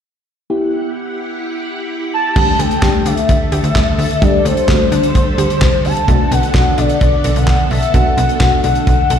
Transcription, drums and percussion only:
2.36 kick loud
2.36 crash loud
2.60 closed hi-hat medium
2.71 closed hi-hat soft
2.82 kick loud
2.82 snare loud
2.82 clap medium
3.06 closed hi-hat medium
3.17 closed hi-hat soft
3.29 kick loud
3.29 closed hi-hat medium
3.52 closed hi-hat medium
3.64 closed hi-hat medium
3.75 kick loud
3.75 snare loud
3.75 clap loud
3.99 open hi-hat medium
4.11 closed hi-hat medium
4.22 kick loud
4.22 closed hi-hat medium
4.46 closed hi-hat medium
4.57 closed hi-hat soft
4.68 kick loud
4.68 snare loud
4.68 clap medium
4.92 closed hi-hat medium
5.03 closed hi-hat medium
5.15 kick loud
5.15 closed hi-hat medium
5.38 closed hi-hat medium
5.50 closed hi-hat medium
5.61 kick loud
5.61 snare loud
5.61 clap loud
5.85 open hi-hat medium
5.97 closed hi-hat medium
6.08 kick loud
6.08 closed hi-hat medium
6.32 closed hi-hat medium
6.43 closed hi-hat soft
6.54 kick loud
6.54 snare loud
6.54 clap medium
6.78 closed hi-hat medium
6.89 closed hi-hat soft
7.01 kick loud
7.01 closed hi-hat medium
7.24 closed hi-hat medium
7.36 closed hi-hat medium
7.47 kick loud
7.47 snare loud
7.47 clap loud
7.71 open hi-hat medium
7.82 closed hi-hat medium
7.94 kick loud
7.94 closed hi-hat medium
8.18 closed hi-hat medium
8.29 closed hi-hat soft
8.40 kick loud
8.40 snare loud
8.40 clap medium
8.64 closed hi-hat medium
8.75 closed hi-hat soft
8.87 kick loud
8.87 closed hi-hat medium
9.10 closed hi-hat medium

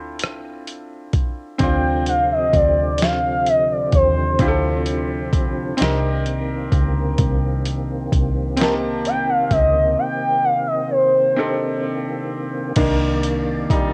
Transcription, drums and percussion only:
0.19 closed hi-hat medium
0.23 cross-stick loud
0.67 closed hi-hat soft
1.13 kick medium
1.13 closed hi-hat soft
1.59 kick loud
1.59 closed hi-hat medium
2.06 closed hi-hat medium
2.53 kick loud
2.53 closed hi-hat soft
2.98 closed hi-hat medium
3.02 snare loud
3.47 closed hi-hat soft
3.92 kick medium
3.92 closed hi-hat soft
4.39 kick loud
4.39 closed hi-hat medium
4.86 closed hi-hat medium
5.33 kick medium
5.33 closed hi-hat medium
5.78 closed hi-hat medium
5.82 snare loud
6.26 closed hi-hat soft
6.72 kick medium
6.72 closed hi-hat soft
7.18 kick loud
7.18 closed hi-hat medium
7.65 closed hi-hat medium
8.12 kick medium
8.12 closed hi-hat medium
8.57 closed hi-hat medium
8.61 snare loud
9.05 closed hi-hat soft
9.51 kick medium
9.51 closed hi-hat soft
12.76 kick loud
12.76 closed hi-hat medium
12.76 crash loud
13.23 closed hi-hat medium
13.70 kick medium
13.70 closed hi-hat medium

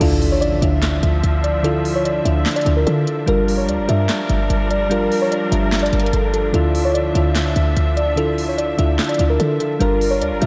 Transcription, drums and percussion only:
0.01 closed hi-hat medium
0.01 crash loud
0.22 open hi-hat medium
0.42 closed hi-hat medium
0.62 closed hi-hat loud
0.82 snare loud
0.82 clap medium
0.82 closed hi-hat medium
1.03 closed hi-hat medium
1.24 closed hi-hat medium
1.44 closed hi-hat medium
1.64 closed hi-hat medium
1.85 open hi-hat medium
2.05 closed hi-hat medium
2.25 closed hi-hat medium
2.46 snare loud
2.46 clap loud
2.46 closed hi-hat medium
2.51 closed hi-hat medium
2.56 closed hi-hat medium
2.61 closed hi-hat soft
2.66 closed hi-hat medium
2.87 closed hi-hat medium
3.07 closed hi-hat medium
3.28 closed hi-hat medium
3.48 open hi-hat medium
3.69 closed hi-hat medium
3.89 closed hi-hat medium
4.09 snare loud
4.09 clap loud
4.09 closed hi-hat medium
4.29 closed hi-hat medium
4.50 closed hi-hat medium
4.71 closed hi-hat medium
4.91 closed hi-hat medium
5.12 open hi-hat medium
5.32 closed hi-hat medium
5.52 closed hi-hat medium
5.72 snare loud
5.72 clap medium
5.72 closed hi-hat medium
5.79 closed hi-hat medium
5.86 closed hi-hat medium
5.93 closed hi-hat medium
6.00 closed hi-hat medium
6.06 closed hi-hat medium
6.13 closed hi-hat medium
6.34 closed hi-hat medium
6.54 closed hi-hat medium
6.75 open hi-hat medium
6.95 closed hi-hat medium
7.15 closed hi-hat medium
7.35 snare loud
7.35 clap loud
7.35 closed hi-hat medium
7.56 closed hi-hat medium
7.77 closed hi-hat medium
7.97 closed hi-hat medium
8.17 closed hi-hat medium
8.38 open hi-hat medium
8.58 closed hi-hat medium
8.79 closed hi-hat medium
8.99 snare loud
8.99 clap loud
8.99 closed hi-hat medium
9.04 closed hi-hat medium
9.09 closed hi-hat medium
9.14 closed hi-hat soft
9.19 closed hi-hat medium
9.40 closed hi-hat medium
9.60 closed hi-hat medium
9.81 closed hi-hat medium
10.01 open hi-hat medium
10.22 closed hi-hat medium
10.42 closed hi-hat medium

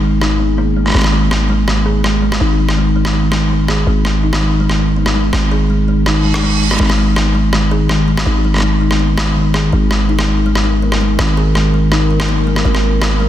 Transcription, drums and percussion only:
0.21 cross-stick soft
0.86 cross-stick soft
0.88 cross-stick soft
0.90 cross-stick soft
0.92 cross-stick soft
0.95 cross-stick soft
0.97 cross-stick soft
0.99 cross-stick soft
1.02 cross-stick soft
1.04 cross-stick soft
1.31 cross-stick medium
1.68 cross-stick soft
2.04 cross-stick soft
2.32 cross-stick medium
2.69 cross-stick soft
3.05 cross-stick medium
3.32 cross-stick medium
3.68 cross-stick soft
4.05 cross-stick soft
4.33 cross-stick medium
4.70 cross-stick soft
5.06 cross-stick medium
5.33 cross-stick medium
6.06 cross-stick medium
6.34 cross-stick medium
6.71 cross-stick soft
6.74 cross-stick soft
6.77 cross-stick soft
6.80 cross-stick soft
6.83 cross-stick soft
6.86 cross-stick soft
6.90 cross-stick medium
7.16 cross-stick medium
7.53 cross-stick medium
7.89 cross-stick medium
8.17 cross-stick medium
8.54 cross-stick soft
8.56 cross-stick soft
8.58 cross-stick soft
8.60 cross-stick soft
8.91 cross-stick medium
9.18 cross-stick medium
9.54 cross-stick medium
9.91 cross-stick soft
10.19 cross-stick medium
10.55 cross-stick soft
10.92 cross-stick soft
11.19 cross-stick medium
11.55 cross-stick soft
11.92 cross-stick soft
12.20 cross-stick medium
12.56 cross-stick soft
12.75 cross-stick soft
13.02 cross-stick medium

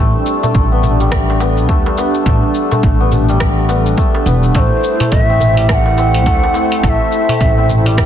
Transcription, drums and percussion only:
0.26 cabasa medium
0.43 darbuka ka medium
0.43 darbuka dum medium
0.43 cabasa soft
0.55 kick loud
0.55 darbuka ka medium
0.55 cabasa soft
0.83 darbuka dum medium
0.83 cabasa medium
1.00 cabasa soft
1.12 kick loud
1.12 cross-stick medium
1.12 cabasa soft
1.30 darbuka tek medium
1.40 darbuka tek medium
1.40 cabasa medium
1.57 cabasa soft
1.69 kick loud
1.69 cabasa soft
1.86 darbuka tek medium
1.98 darbuka tek medium
1.98 cabasa medium
2.15 cabasa soft
2.26 kick loud
2.26 cabasa soft
2.43 darbuka tek soft
2.55 cabasa medium
2.71 darbuka ka medium
2.71 darbuka tek medium
2.71 darbuka dum medium
2.71 cabasa soft
2.83 kick loud
2.83 darbuka ka medium
2.83 cabasa soft
3.12 darbuka dum medium
3.12 cabasa medium
3.29 darbuka tek medium
3.29 cabasa soft
3.40 kick loud
3.40 cross-stick medium
3.40 cabasa soft
3.69 darbuka tek medium
3.69 cabasa medium
3.86 cabasa soft
3.98 kick loud
3.98 cabasa soft
4.15 darbuka tek medium
4.26 cabasa medium
4.43 cabasa soft
4.55 kick loud
4.55 open hi-hat soft
4.55 cabasa soft
4.84 cabasa medium
5.00 open hi-hat medium
5.00 darbuka ka medium
5.00 darbuka dum medium
5.00 cabasa soft
5.12 kick loud
5.12 open hi-hat soft
5.12 darbuka ka medium
5.12 cabasa soft
5.40 darbuka dum medium
5.40 cabasa medium
5.57 open hi-hat medium
5.57 cabasa soft
5.69 kick loud
5.69 cross-stick medium
5.69 open hi-hat soft
5.69 cabasa soft
5.86 darbuka tek medium
5.98 darbuka tek medium
5.98 cabasa medium
6.14 open hi-hat medium
6.14 cabasa soft
6.26 kick loud
6.26 open hi-hat soft
6.26 cabasa soft
6.43 darbuka tek medium
6.54 darbuka tek medium
6.54 cabasa medium
6.72 open hi-hat soft
6.72 cabasa soft
6.84 kick loud
6.84 open hi-hat soft
6.84 cabasa soft
7.12 cabasa medium
7.29 open hi-hat medium
7.29 darbuka ka medium
7.29 darbuka tek medium
7.29 darbuka dum medium
7.29 cabasa soft
7.41 kick loud
7.41 open hi-hat soft
7.41 darbuka ka medium
7.41 cabasa soft
7.69 darbuka dum medium
7.69 cabasa medium
7.86 open hi-hat medium
7.86 darbuka tek medium
7.86 cabasa soft
7.98 kick medium
7.98 cross-stick medium
7.98 open hi-hat soft
7.98 cabasa soft

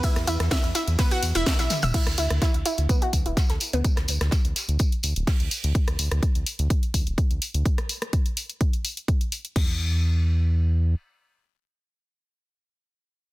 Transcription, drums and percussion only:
0.03 kick loud
0.03 closed hi-hat medium
0.03 ride medium
0.03 tambourine medium
0.16 cross-stick medium
0.16 snare soft
0.16 closed hi-hat soft
0.27 open hi-hat loud
0.27 tambourine medium
0.40 cross-stick medium
0.40 snare soft
0.40 closed hi-hat soft
0.51 kick loud
0.51 snare loud
0.51 closed hi-hat medium
0.51 ride medium
0.51 tambourine medium
0.64 closed hi-hat soft
0.75 snare soft
0.75 open hi-hat loud
0.75 tambourine medium
0.88 closed hi-hat soft
0.98 kick loud
0.98 snare loud
0.98 closed hi-hat medium
0.98 ride medium
0.98 tambourine medium
1.11 closed hi-hat soft
1.23 open hi-hat loud
1.23 tambourine medium
1.35 closed hi-hat soft
1.46 kick loud
1.46 snare loud
1.46 closed hi-hat medium
1.46 ride medium
1.46 tambourine medium
1.59 snare loud
1.59 closed hi-hat soft
1.59 tambourine medium
1.70 snare loud
1.70 open hi-hat loud
1.70 high tom medium
1.70 tambourine medium
1.82 snare loud
1.82 open hi-hat medium
1.82 mid tom medium
1.82 tambourine medium
1.94 kick loud
1.94 closed hi-hat medium
1.94 tambourine medium
1.94 crash medium
2.07 cross-stick medium
2.07 snare soft
2.07 closed hi-hat soft
2.18 open hi-hat loud
2.18 tambourine medium
2.30 cross-stick medium
2.30 closed hi-hat soft
2.42 kick loud
2.42 snare loud
2.42 closed hi-hat medium
2.42 tambourine medium
2.54 closed hi-hat soft
2.66 open hi-hat loud
2.66 tambourine medium
2.78 closed hi-hat soft
2.89 kick loud
2.89 closed hi-hat medium
2.89 tambourine medium
3.02 closed hi-hat soft
3.13 kick medium
3.13 open hi-hat loud
3.13 tambourine medium
3.26 closed hi-hat soft
3.37 kick loud
3.37 snare loud
3.37 closed hi-hat medium
3.37 tambourine medium
3.49 snare medium
3.49 closed hi-hat soft
3.60 open hi-hat medium
3.60 tambourine medium
3.73 closed hi-hat soft
3.84 kick loud
3.84 closed hi-hat medium
3.84 tambourine medium
3.96 cross-stick medium
3.96 snare soft
3.96 closed hi-hat soft
4.08 open hi-hat loud
4.08 tambourine medium
4.21 cross-stick medium
4.21 snare soft
4.21 closed hi-hat soft
4.31 kick loud
4.31 snare loud
4.31 closed hi-hat medium
4.31 tambourine medium
4.45 closed hi-hat soft
4.56 snare soft
4.56 open hi-hat loud
4.56 tambourine medium
4.69 closed hi-hat soft
4.79 kick loud
4.79 closed hi-hat medium
4.79 tambourine medium
4.92 closed hi-hat soft
5.03 open hi-hat loud
5.03 tambourine medium
5.16 closed hi-hat soft
5.27 kick loud
5.27 snare loud
5.27 closed hi-hat medium
5.27 open hi-hat medium
5.40 closed hi-hat soft
5.51 open hi-hat loud
5.51 tambourine medium
5.64 closed hi-hat soft
5.75 kick loud
5.75 closed hi-hat medium
5.88 cross-stick medium
5.88 closed hi-hat soft
5.99 open hi-hat loud
6.11 cross-stick medium
6.11 closed hi-hat soft
6.23 kick loud
6.23 closed hi-hat medium
6.35 closed hi-hat soft
6.46 open hi-hat loud
6.59 closed hi-hat soft
6.70 kick loud
6.70 closed hi-hat medium
6.83 closed hi-hat soft
6.94 kick medium
6.94 open hi-hat loud
7.07 closed hi-hat soft
7.18 kick loud
7.18 closed hi-hat medium
7.31 closed hi-hat soft
7.42 open hi-hat medium
7.54 closed hi-hat soft
7.66 kick loud
7.66 closed hi-hat medium
7.78 cross-stick medium
7.78 closed hi-hat soft
7.89 open hi-hat loud
8.02 cross-stick medium
8.02 closed hi-hat soft
8.13 kick loud
8.13 closed hi-hat medium
8.26 closed hi-hat soft
8.37 open hi-hat loud
8.50 closed hi-hat soft
8.61 kick loud
8.61 closed hi-hat medium
8.73 closed hi-hat soft
8.85 open hi-hat loud
8.97 closed hi-hat soft
9.08 kick loud
9.08 closed hi-hat medium
9.21 closed hi-hat soft
9.32 open hi-hat medium
9.45 closed hi-hat soft
9.56 kick loud
9.56 crash medium

